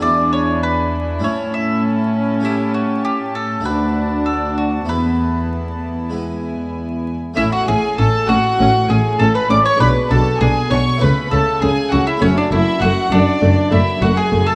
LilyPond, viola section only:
\new Staff \with { instrumentName = "Viola section" } { \time 4/4 \key a \major \tempo 4 = 99 d'2 cis'2~ | cis'2 d'2 | b2.~ b8 r8 | cis'8 cis'8 cis'8 cis'8 cis'8 cis'8 cis'8 cis'8 |
d'8 d'8 d'8 d'8 a8 a8 a8 a8 | a8 a8 a8 a8 a8 a8 a8 a8 | }